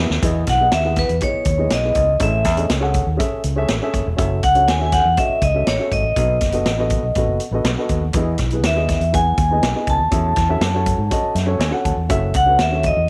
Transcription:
0.10 D#2, snare
0.22 E2 E3 B3 E4 G#4 D#5, kick, closed hi-hat
0.47 B1 F#5, kick, snare, closed hi-hat
0.60 B3 E4 G#4 D#5
0.72 D#2 E5, snare, closed hi-hat
0.84 B3 E4 G#4 F#5
0.96 B4, kick, snare, closed hi-hat
1.09 E2, closed hi-hat
1.21 B3 E4 G#4 C#5 D#5, kick, closed hi-hat
1.34 muted fingered electric bass stroke
1.45 D#2, kick, closed hi-hat
1.58 B3 E4 G#4 D#5
1.70 B1 D#5, snare, closed hi-hat
1.84 B3 E4 G#4 D#5
1.95 C#2, kick, closed hi-hat
2.19 A1 A2 C#4 G#4 A4 E5, kick, closed hi-hat
2.44 E2, kick, snare, closed hi-hat
2.57 C#4 G#4 A4 D#5, closed hi-hat
2.70 C#2, snare, closed hi-hat
2.80 C#4 G#4 A4 F#5
2.94 kick, closed hi-hat
3.06 D#2
3.17 C#4 G#4 A4 E5, kick, closed hi-hat
3.32 muted fingered electric bass stroke
3.44 C#2, closed hi-hat
3.56 C#4 G#4 A4 E5
3.68 A1, snare, closed hi-hat
3.82 C#4 G#4 A4 E5
3.94 F#1, kick, closed hi-hat
4.06 E1
4.16 F#1 C#4 F#4 A4 E5, kick, closed hi-hat
4.43 C#2 F#5, kick, closed hi-hat
4.55 C#4 F#4 A4 C#5, closed hi-hat
4.68 D#2 G#5, snare, closed hi-hat
4.79 C#4 F#4 A4 E5
4.86 G#5
4.92 F#5, kick, snare, closed hi-hat
5.05 E2
5.17 C#4 F#4 A4 D#5 E5, kick, closed hi-hat
5.29 muted fingered electric bass stroke
5.41 C#2 D#5, kick, closed hi-hat
5.54 C#4 F#4 A4 E5
5.67 A1 C#5, snare, closed hi-hat
5.78 C#4 F#4 A4 E5
5.91 G#1 D#5, kick, closed hi-hat
6.03 A1
6.16 B1 B2 B3 F#4 A4 D#5, kick, closed hi-hat
6.41 F#1, kick, snare, closed hi-hat
6.52 B3 F#4 A4 D#5, closed hi-hat
6.66 A1, snare, closed hi-hat
6.78 B3 F#4 A4 D#5
6.90 kick, closed hi-hat
7.03 B1
7.15 A1 B3 F#4 A4 D#5, kick, closed hi-hat
7.28 F#1
7.40 closed hi-hat
7.51 A1 B3 F#4 A4 D#5
7.64 B1, snare, closed hi-hat
7.78 B3 F#4 A4 D#5
7.89 D#2, kick, closed hi-hat
8.13 E2 E3 B3 E4 G#4 D#5, kick, closed hi-hat
8.38 B1, kick, snare, closed hi-hat
8.50 B3 E4 G#4 B4, closed hi-hat
8.63 D#2 E5, snare, closed hi-hat
8.75 B3 E4 G#4 D#5
8.89 kick, snare, closed hi-hat
9.00 E2, closed hi-hat
9.12 B3 E4 G#4 F#5 G#5, kick, closed hi-hat
9.37 D#2, kick, closed hi-hat
9.51 B3 E4 G#4 D#5
9.62 B1, snare, closed hi-hat
9.74 B3 E4 G#4 D#5
9.87 C#2 A5, kick, closed hi-hat
9.99 D#2
10.11 E2 E3 C#4 F#4 A4 E5, kick, closed hi-hat
10.36 E2, kick, snare, closed hi-hat
10.49 C#4 F#4 A4 E5
10.61 F#2, snare, closed hi-hat
10.74 C#4 F#4 A4 C#5
10.86 kick, closed hi-hat
10.98 G#2
11.10 C#4 F#4 A4 D#5, kick, closed hi-hat
11.22 muted fingered electric bass stroke
11.35 F#2 E5, snare, closed hi-hat
11.46 C#4 F#4 A4 C#5
11.58 D#2 G#5, snare, closed hi-hat
11.70 C#4 F#4 A4 F#5
11.84 D#2 A5, kick, closed hi-hat
11.97 E2
12.09 F#1 C#4 F#4 A4 E5, kick, closed hi-hat
12.34 C#2 F#5, kick, closed hi-hat
12.46 C#4 F#4 A4 B4
12.59 D#2 E5, snare, closed hi-hat
12.71 C#4 F#4 A4 E5
12.83 D#5, kick, closed hi-hat
12.97 E2

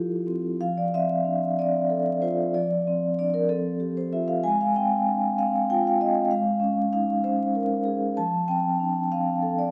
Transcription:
Already playing: F3 E4 F4 G4 A4
0.27 C4
0.61 F3 F5
0.77 D5
0.94 C4 E5
1.25 D4
1.59 C4 D5
1.90 A4
2.22 F4 C5
2.54 F3 D5
2.87 C4
3.19 D4 D5
3.34 A#4
3.49 C4 A4
3.80 G4
3.97 C5
4.13 F4 E5
4.28 F5
4.43 G#3 G#5
4.61 F5
4.76 C4 G5
5.07 D4
5.38 C4 F5
5.70 F4 G5
5.87 F5
6.01 C4 D#5
6.31 G#3 F5
6.60 C#4
6.93 D#4 F5
7.24 C#4 C5
7.55 A#4
7.85 G#4
8.17 F3 A5
8.48 C4 G5
8.80 D4
9.12 C4 F5
9.42 A4
9.58 D5

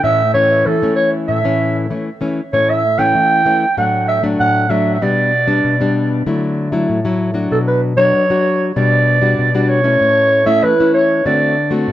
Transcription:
0.04 A2 E3 A3 C#4 E5
0.34 E3 A3 C#4 C#5
0.66 E3 A4
0.82 E3 A3 C#4
0.96 C#5
1.28 A2 E5
1.44 E3 A3 C#4
1.90 E3 A3 C#4
2.21 E3 A3 C#4
2.53 A2 E3 A3 C#4 C#5
2.70 E5
2.98 E3 A3 C#4 G5
3.15 E3
3.46 E3 A3 C#4
3.77 A2 F#3 A3 D4 F#5
4.08 E5
4.23 F#3 A3 D4
4.40 A2 F#5
4.70 F#3 A3 D4 E5
4.95 E5
5.02 B2 G3 B3 D4 D5
5.47 G3 B3 D4
5.64 B2
5.81 G3 B3 D4
6.26 D3 F#3 A3 E4
6.72 F#3 A3 E4
6.89 A2
7.05 F#3 A3 E4
7.34 F#3 D4 F#4
7.51 B2 A4
7.68 B4
7.97 F#3 D4 F#4 C#5
8.14 F#3
8.30 F#3 D4 F#4
8.76 B2 G3 D4 F#4 D5
9.21 G3 D4 F#4
9.39 B2
9.54 G3 D4 F#4
9.63 D5
9.69 C#5
9.84 A3 C#4 E4
10.01 A2
10.46 A3 C#4 E4 E5
10.63 E3 B4
10.80 A3 C#4 E4
10.94 C#5
11.25 D3 A3 C4 F#4 D5
11.71 A3 C4 F#4
11.88 A2

